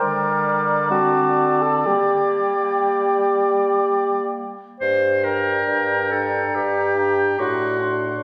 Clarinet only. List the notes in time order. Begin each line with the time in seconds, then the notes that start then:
0.00 G3
0.91 C4
1.87 A#3
4.81 C5
5.25 A#4
6.12 A4
6.55 G4
7.39 F#4